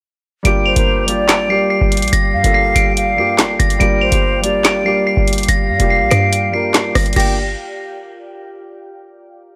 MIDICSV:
0, 0, Header, 1, 7, 480
1, 0, Start_track
1, 0, Key_signature, -2, "minor"
1, 0, Tempo, 419580
1, 515, Time_signature, 4, 2, 24, 8
1, 10934, End_track
2, 0, Start_track
2, 0, Title_t, "Synth bell"
2, 0, Program_c, 0, 98
2, 517, Note_on_c, 0, 98, 108
2, 742, Note_off_c, 0, 98, 0
2, 750, Note_on_c, 0, 101, 88
2, 1429, Note_off_c, 0, 101, 0
2, 1477, Note_on_c, 0, 98, 83
2, 1702, Note_off_c, 0, 98, 0
2, 1717, Note_on_c, 0, 96, 74
2, 1934, Note_off_c, 0, 96, 0
2, 1948, Note_on_c, 0, 96, 77
2, 2402, Note_off_c, 0, 96, 0
2, 2434, Note_on_c, 0, 94, 110
2, 2886, Note_off_c, 0, 94, 0
2, 2909, Note_on_c, 0, 96, 92
2, 3138, Note_off_c, 0, 96, 0
2, 3152, Note_on_c, 0, 98, 90
2, 3604, Note_off_c, 0, 98, 0
2, 3641, Note_on_c, 0, 96, 68
2, 4089, Note_off_c, 0, 96, 0
2, 4112, Note_on_c, 0, 94, 79
2, 4340, Note_off_c, 0, 94, 0
2, 4348, Note_on_c, 0, 98, 111
2, 4578, Note_off_c, 0, 98, 0
2, 4592, Note_on_c, 0, 101, 82
2, 5270, Note_off_c, 0, 101, 0
2, 5317, Note_on_c, 0, 98, 90
2, 5542, Note_off_c, 0, 98, 0
2, 5558, Note_on_c, 0, 96, 72
2, 5783, Note_off_c, 0, 96, 0
2, 5797, Note_on_c, 0, 96, 84
2, 6247, Note_off_c, 0, 96, 0
2, 6277, Note_on_c, 0, 94, 105
2, 6727, Note_off_c, 0, 94, 0
2, 6754, Note_on_c, 0, 96, 81
2, 6981, Note_off_c, 0, 96, 0
2, 6985, Note_on_c, 0, 98, 88
2, 7441, Note_off_c, 0, 98, 0
2, 7476, Note_on_c, 0, 96, 73
2, 7927, Note_off_c, 0, 96, 0
2, 7954, Note_on_c, 0, 94, 76
2, 8181, Note_off_c, 0, 94, 0
2, 8195, Note_on_c, 0, 94, 86
2, 8418, Note_off_c, 0, 94, 0
2, 10934, End_track
3, 0, Start_track
3, 0, Title_t, "Flute"
3, 0, Program_c, 1, 73
3, 755, Note_on_c, 1, 72, 77
3, 1206, Note_off_c, 1, 72, 0
3, 1232, Note_on_c, 1, 74, 84
3, 1910, Note_off_c, 1, 74, 0
3, 2675, Note_on_c, 1, 77, 84
3, 3352, Note_off_c, 1, 77, 0
3, 3395, Note_on_c, 1, 77, 86
3, 3846, Note_off_c, 1, 77, 0
3, 4594, Note_on_c, 1, 72, 87
3, 5046, Note_off_c, 1, 72, 0
3, 5075, Note_on_c, 1, 74, 81
3, 5752, Note_off_c, 1, 74, 0
3, 6513, Note_on_c, 1, 77, 81
3, 7668, Note_off_c, 1, 77, 0
3, 8193, Note_on_c, 1, 79, 87
3, 8417, Note_off_c, 1, 79, 0
3, 10934, End_track
4, 0, Start_track
4, 0, Title_t, "Ambient pad"
4, 0, Program_c, 2, 92
4, 514, Note_on_c, 2, 67, 81
4, 514, Note_on_c, 2, 77, 77
4, 514, Note_on_c, 2, 79, 86
4, 515, Note_on_c, 2, 74, 74
4, 8149, Note_off_c, 2, 67, 0
4, 8149, Note_off_c, 2, 74, 0
4, 8149, Note_off_c, 2, 77, 0
4, 8149, Note_off_c, 2, 79, 0
4, 8196, Note_on_c, 2, 65, 76
4, 8196, Note_on_c, 2, 70, 71
4, 8196, Note_on_c, 2, 79, 82
4, 8197, Note_on_c, 2, 74, 68
4, 8419, Note_off_c, 2, 65, 0
4, 8419, Note_off_c, 2, 70, 0
4, 8419, Note_off_c, 2, 74, 0
4, 8419, Note_off_c, 2, 79, 0
4, 10934, End_track
5, 0, Start_track
5, 0, Title_t, "Grand piano"
5, 0, Program_c, 3, 0
5, 491, Note_on_c, 3, 55, 98
5, 503, Note_on_c, 3, 58, 83
5, 515, Note_on_c, 3, 62, 91
5, 527, Note_on_c, 3, 65, 94
5, 539, Note_on_c, 3, 67, 116
5, 705, Control_c, 3, 64, 127
5, 800, Note_off_c, 3, 55, 0
5, 806, Note_off_c, 3, 58, 0
5, 813, Note_off_c, 3, 62, 0
5, 819, Note_off_c, 3, 65, 0
5, 825, Note_off_c, 3, 67, 0
5, 850, Note_on_c, 3, 55, 68
5, 863, Note_on_c, 3, 58, 73
5, 874, Note_on_c, 3, 62, 63
5, 887, Note_on_c, 3, 65, 69
5, 898, Note_on_c, 3, 70, 79
5, 1160, Note_off_c, 3, 55, 0
5, 1166, Note_off_c, 3, 58, 0
5, 1172, Note_off_c, 3, 62, 0
5, 1179, Note_off_c, 3, 65, 0
5, 1184, Note_off_c, 3, 70, 0
5, 1210, Note_on_c, 3, 55, 79
5, 1222, Note_on_c, 3, 58, 70
5, 1234, Note_on_c, 3, 62, 74
5, 1246, Note_on_c, 3, 65, 77
5, 1258, Note_on_c, 3, 67, 87
5, 1620, Note_off_c, 3, 55, 0
5, 1626, Note_off_c, 3, 58, 0
5, 1631, Note_off_c, 3, 62, 0
5, 1637, Note_off_c, 3, 65, 0
5, 1643, Note_off_c, 3, 67, 0
5, 1691, Note_on_c, 3, 55, 79
5, 1703, Note_on_c, 3, 58, 74
5, 1715, Note_on_c, 3, 62, 70
5, 1727, Note_on_c, 3, 65, 69
5, 1740, Note_on_c, 3, 67, 87
5, 2497, Note_off_c, 3, 55, 0
5, 2503, Note_off_c, 3, 58, 0
5, 2509, Note_off_c, 3, 62, 0
5, 2515, Note_off_c, 3, 65, 0
5, 2521, Note_off_c, 3, 67, 0
5, 2770, Note_on_c, 3, 55, 80
5, 2783, Note_on_c, 3, 58, 70
5, 2794, Note_on_c, 3, 62, 69
5, 2806, Note_on_c, 3, 65, 72
5, 2819, Note_on_c, 3, 69, 82
5, 3477, Note_off_c, 3, 55, 0
5, 3484, Note_off_c, 3, 58, 0
5, 3489, Note_off_c, 3, 62, 0
5, 3495, Note_off_c, 3, 65, 0
5, 3502, Note_off_c, 3, 69, 0
5, 3611, Note_on_c, 3, 55, 78
5, 3623, Note_on_c, 3, 58, 73
5, 3635, Note_on_c, 3, 62, 69
5, 3648, Note_on_c, 3, 65, 67
5, 3659, Note_on_c, 3, 67, 90
5, 4218, Note_off_c, 3, 55, 0
5, 4224, Note_off_c, 3, 58, 0
5, 4230, Note_off_c, 3, 62, 0
5, 4237, Note_off_c, 3, 65, 0
5, 4242, Note_off_c, 3, 67, 0
5, 4331, Note_on_c, 3, 55, 105
5, 4343, Note_on_c, 3, 58, 90
5, 4355, Note_on_c, 3, 62, 94
5, 4366, Note_on_c, 3, 65, 89
5, 4369, Control_c, 3, 64, 0
5, 4378, Note_on_c, 3, 67, 106
5, 4596, Control_c, 3, 64, 127
5, 4640, Note_off_c, 3, 55, 0
5, 4646, Note_off_c, 3, 58, 0
5, 4652, Note_off_c, 3, 62, 0
5, 4658, Note_off_c, 3, 65, 0
5, 4664, Note_off_c, 3, 67, 0
5, 4690, Note_on_c, 3, 55, 76
5, 4702, Note_on_c, 3, 58, 64
5, 4715, Note_on_c, 3, 62, 65
5, 4726, Note_on_c, 3, 65, 66
5, 4738, Note_on_c, 3, 67, 77
5, 5000, Note_off_c, 3, 55, 0
5, 5006, Note_off_c, 3, 58, 0
5, 5012, Note_off_c, 3, 62, 0
5, 5018, Note_off_c, 3, 65, 0
5, 5024, Note_off_c, 3, 67, 0
5, 5051, Note_on_c, 3, 55, 79
5, 5062, Note_on_c, 3, 58, 67
5, 5075, Note_on_c, 3, 62, 70
5, 5086, Note_on_c, 3, 65, 69
5, 5099, Note_on_c, 3, 67, 84
5, 5460, Note_off_c, 3, 55, 0
5, 5466, Note_off_c, 3, 58, 0
5, 5472, Note_off_c, 3, 62, 0
5, 5477, Note_off_c, 3, 65, 0
5, 5484, Note_off_c, 3, 67, 0
5, 5530, Note_on_c, 3, 55, 78
5, 5543, Note_on_c, 3, 58, 76
5, 5555, Note_on_c, 3, 62, 72
5, 5567, Note_on_c, 3, 65, 71
5, 5579, Note_on_c, 3, 67, 86
5, 6337, Note_off_c, 3, 55, 0
5, 6343, Note_off_c, 3, 58, 0
5, 6349, Note_off_c, 3, 62, 0
5, 6355, Note_off_c, 3, 65, 0
5, 6361, Note_off_c, 3, 67, 0
5, 6610, Note_on_c, 3, 55, 76
5, 6622, Note_on_c, 3, 58, 68
5, 6634, Note_on_c, 3, 62, 71
5, 6646, Note_on_c, 3, 65, 72
5, 6658, Note_on_c, 3, 67, 88
5, 7317, Note_off_c, 3, 55, 0
5, 7323, Note_off_c, 3, 58, 0
5, 7329, Note_off_c, 3, 62, 0
5, 7335, Note_off_c, 3, 65, 0
5, 7341, Note_off_c, 3, 67, 0
5, 7450, Note_on_c, 3, 55, 73
5, 7463, Note_on_c, 3, 58, 68
5, 7475, Note_on_c, 3, 62, 69
5, 7487, Note_on_c, 3, 65, 71
5, 7499, Note_on_c, 3, 70, 84
5, 8058, Note_off_c, 3, 55, 0
5, 8064, Note_off_c, 3, 58, 0
5, 8070, Note_off_c, 3, 62, 0
5, 8076, Note_off_c, 3, 65, 0
5, 8082, Note_off_c, 3, 70, 0
5, 8193, Note_on_c, 3, 58, 85
5, 8193, Note_on_c, 3, 65, 78
5, 8194, Note_on_c, 3, 62, 79
5, 8194, Note_on_c, 3, 67, 95
5, 8211, Control_c, 3, 64, 0
5, 8417, Note_off_c, 3, 58, 0
5, 8417, Note_off_c, 3, 62, 0
5, 8417, Note_off_c, 3, 65, 0
5, 8417, Note_off_c, 3, 67, 0
5, 10934, End_track
6, 0, Start_track
6, 0, Title_t, "808-style bass"
6, 0, Program_c, 4, 38
6, 515, Note_on_c, 4, 31, 110
6, 861, Note_off_c, 4, 31, 0
6, 874, Note_on_c, 4, 31, 114
6, 1835, Note_on_c, 4, 34, 96
6, 1852, Note_off_c, 4, 31, 0
6, 2063, Note_off_c, 4, 34, 0
6, 2075, Note_on_c, 4, 31, 107
6, 2314, Note_on_c, 4, 34, 100
6, 2332, Note_off_c, 4, 31, 0
6, 2428, Note_off_c, 4, 34, 0
6, 2434, Note_on_c, 4, 31, 110
6, 2675, Note_on_c, 4, 43, 101
6, 2692, Note_off_c, 4, 31, 0
6, 2789, Note_off_c, 4, 43, 0
6, 2794, Note_on_c, 4, 31, 104
6, 3140, Note_off_c, 4, 31, 0
6, 3154, Note_on_c, 4, 31, 106
6, 3635, Note_on_c, 4, 43, 101
6, 3653, Note_off_c, 4, 31, 0
6, 3874, Note_on_c, 4, 31, 100
6, 3891, Note_off_c, 4, 43, 0
6, 4102, Note_off_c, 4, 31, 0
6, 4115, Note_on_c, 4, 31, 104
6, 4345, Note_off_c, 4, 31, 0
6, 4355, Note_on_c, 4, 31, 107
6, 4595, Note_on_c, 4, 33, 102
6, 4612, Note_off_c, 4, 31, 0
6, 4709, Note_off_c, 4, 33, 0
6, 4714, Note_on_c, 4, 31, 114
6, 5556, Note_on_c, 4, 33, 105
6, 5573, Note_off_c, 4, 31, 0
6, 5897, Note_off_c, 4, 33, 0
6, 5916, Note_on_c, 4, 31, 102
6, 6261, Note_off_c, 4, 31, 0
6, 6275, Note_on_c, 4, 31, 107
6, 6516, Note_on_c, 4, 43, 97
6, 6533, Note_off_c, 4, 31, 0
6, 6629, Note_off_c, 4, 43, 0
6, 6635, Note_on_c, 4, 29, 110
6, 6875, Note_on_c, 4, 34, 106
6, 6893, Note_off_c, 4, 29, 0
6, 6989, Note_off_c, 4, 34, 0
6, 6996, Note_on_c, 4, 43, 103
6, 7917, Note_off_c, 4, 43, 0
6, 7956, Note_on_c, 4, 31, 107
6, 8186, Note_off_c, 4, 31, 0
6, 8195, Note_on_c, 4, 31, 112
6, 8641, Note_off_c, 4, 31, 0
6, 10934, End_track
7, 0, Start_track
7, 0, Title_t, "Drums"
7, 515, Note_on_c, 9, 42, 84
7, 629, Note_off_c, 9, 42, 0
7, 873, Note_on_c, 9, 42, 84
7, 987, Note_off_c, 9, 42, 0
7, 1234, Note_on_c, 9, 42, 90
7, 1349, Note_off_c, 9, 42, 0
7, 1475, Note_on_c, 9, 38, 113
7, 1475, Note_on_c, 9, 39, 91
7, 1477, Note_on_c, 9, 42, 84
7, 1589, Note_off_c, 9, 38, 0
7, 1589, Note_off_c, 9, 39, 0
7, 1591, Note_off_c, 9, 42, 0
7, 2195, Note_on_c, 9, 42, 64
7, 2255, Note_off_c, 9, 42, 0
7, 2255, Note_on_c, 9, 42, 64
7, 2315, Note_off_c, 9, 42, 0
7, 2315, Note_on_c, 9, 42, 63
7, 2376, Note_off_c, 9, 42, 0
7, 2376, Note_on_c, 9, 42, 61
7, 2435, Note_off_c, 9, 42, 0
7, 2435, Note_on_c, 9, 42, 82
7, 2550, Note_off_c, 9, 42, 0
7, 2793, Note_on_c, 9, 42, 83
7, 2907, Note_off_c, 9, 42, 0
7, 3154, Note_on_c, 9, 42, 92
7, 3269, Note_off_c, 9, 42, 0
7, 3397, Note_on_c, 9, 42, 83
7, 3512, Note_off_c, 9, 42, 0
7, 3874, Note_on_c, 9, 38, 115
7, 3874, Note_on_c, 9, 39, 94
7, 3874, Note_on_c, 9, 42, 93
7, 3988, Note_off_c, 9, 38, 0
7, 3988, Note_off_c, 9, 39, 0
7, 3988, Note_off_c, 9, 42, 0
7, 4116, Note_on_c, 9, 42, 84
7, 4230, Note_off_c, 9, 42, 0
7, 4236, Note_on_c, 9, 42, 56
7, 4350, Note_off_c, 9, 42, 0
7, 4356, Note_on_c, 9, 42, 56
7, 4470, Note_off_c, 9, 42, 0
7, 4713, Note_on_c, 9, 42, 81
7, 4827, Note_off_c, 9, 42, 0
7, 5075, Note_on_c, 9, 42, 93
7, 5189, Note_off_c, 9, 42, 0
7, 5315, Note_on_c, 9, 38, 113
7, 5315, Note_on_c, 9, 39, 90
7, 5318, Note_on_c, 9, 42, 87
7, 5429, Note_off_c, 9, 39, 0
7, 5430, Note_off_c, 9, 38, 0
7, 5432, Note_off_c, 9, 42, 0
7, 6035, Note_on_c, 9, 42, 62
7, 6095, Note_off_c, 9, 42, 0
7, 6095, Note_on_c, 9, 42, 63
7, 6155, Note_off_c, 9, 42, 0
7, 6155, Note_on_c, 9, 42, 63
7, 6215, Note_off_c, 9, 42, 0
7, 6215, Note_on_c, 9, 42, 62
7, 6275, Note_off_c, 9, 42, 0
7, 6275, Note_on_c, 9, 42, 85
7, 6389, Note_off_c, 9, 42, 0
7, 6632, Note_on_c, 9, 42, 83
7, 6746, Note_off_c, 9, 42, 0
7, 6994, Note_on_c, 9, 37, 99
7, 6994, Note_on_c, 9, 42, 93
7, 7108, Note_off_c, 9, 42, 0
7, 7109, Note_off_c, 9, 37, 0
7, 7237, Note_on_c, 9, 42, 88
7, 7351, Note_off_c, 9, 42, 0
7, 7714, Note_on_c, 9, 39, 92
7, 7714, Note_on_c, 9, 42, 91
7, 7715, Note_on_c, 9, 38, 112
7, 7829, Note_off_c, 9, 38, 0
7, 7829, Note_off_c, 9, 39, 0
7, 7829, Note_off_c, 9, 42, 0
7, 7955, Note_on_c, 9, 37, 101
7, 7955, Note_on_c, 9, 46, 60
7, 8069, Note_off_c, 9, 37, 0
7, 8070, Note_off_c, 9, 46, 0
7, 8075, Note_on_c, 9, 42, 41
7, 8155, Note_off_c, 9, 42, 0
7, 8155, Note_on_c, 9, 42, 53
7, 8195, Note_on_c, 9, 49, 91
7, 8235, Note_off_c, 9, 42, 0
7, 8235, Note_on_c, 9, 42, 72
7, 8309, Note_off_c, 9, 49, 0
7, 8349, Note_off_c, 9, 42, 0
7, 10934, End_track
0, 0, End_of_file